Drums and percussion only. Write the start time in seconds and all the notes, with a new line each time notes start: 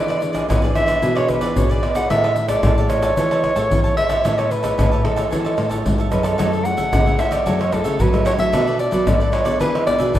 0.10 pandeiro, tamborim, shaker
0.22 pandeiro, shaker
0.35 pandeiro, tamborim, shaker, surdo
0.50 pandeiro, tamborim, shaker, surdo
0.64 pandeiro, shaker
0.76 pandeiro, tamborim, shaker
0.88 pandeiro, tamborim, shaker, surdo
1.02 pandeiro, shaker, surdo
1.17 pandeiro, tamborim, shaker
1.29 pandeiro, tamborim, shaker, surdo
1.41 pandeiro, shaker, surdo
1.56 pandeiro, shaker, surdo
1.71 pandeiro, shaker
1.83 pandeiro, tamborim
1.95 pandeiro, tamborim, shaker, surdo
2.10 pandeiro, tamborim, shaker, surdo
2.24 pandeiro, tamborim, shaker
2.36 pandeiro, shaker
2.48 pandeiro, tamborim, shaker, surdo
2.63 pandeiro, tamborim, shaker, surdo
2.78 pandeiro, shaker
2.90 pandeiro, tamborim, shaker
3.03 pandeiro, tamborim, shaker, surdo
3.17 pandeiro, shaker, surdo
3.31 pandeiro, tamborim, shaker
3.44 pandeiro, tamborim, surdo
3.56 pandeiro, shaker, surdo
3.71 pandeiro, shaker, surdo
3.85 pandeiro, shaker
3.97 pandeiro, tamborim, shaker
4.10 pandeiro, tamborim, shaker, surdo
4.25 pandeiro, tamborim, shaker, surdo
4.39 pandeiro, tamborim, shaker
4.51 pandeiro, shaker
4.64 pandeiro, tamborim, shaker, surdo
4.79 pandeiro, tamborim, shaker, surdo
4.93 pandeiro, shaker
5.05 pandeiro, tamborim
5.17 pandeiro, tamborim, shaker, surdo
5.32 pandeiro, shaker, surdo
5.46 pandeiro, tamborim, shaker
5.58 pandeiro, tamborim
5.71 pandeiro, shaker, surdo
5.86 pandeiro, shaker, surdo
6.00 pandeiro, shaker
6.12 pandeiro, tamborim, shaker
6.24 pandeiro, tamborim, shaker, surdo
6.39 pandeiro, tamborim, shaker, surdo
6.54 pandeiro, shaker
6.65 pandeiro, shaker
6.78 pandeiro, shaker, surdo
6.93 pandeiro, tamborim, shaker, surdo
7.07 pandeiro, shaker
7.19 pandeiro, tamborim, shaker
7.32 pandeiro, tamborim, shaker, surdo
7.47 pandeiro, shaker, surdo
7.61 pandeiro, tamborim, shaker
7.73 pandeiro, tamborim, shaker, surdo
7.85 pandeiro, shaker
8.00 pandeiro, shaker, surdo
8.14 pandeiro, tamborim, shaker
8.26 pandeiro, tamborim, shaker, surdo
8.39 pandeiro, shaker, surdo
8.53 pandeiro, tamborim, shaker, surdo
8.67 pandeiro, shaker
8.79 pandeiro, shaker
8.92 pandeiro, shaker, surdo
9.07 pandeiro, tamborim, shaker, surdo
9.21 pandeiro, shaker
9.33 pandeiro, tamborim
9.46 pandeiro, tamborim, shaker, surdo
9.61 pandeiro, shaker, surdo
9.75 pandeiro, tamborim, shaker
9.87 pandeiro, tamborim, shaker, surdo
10.00 pandeiro, shaker
10.15 pandeiro, shaker, surdo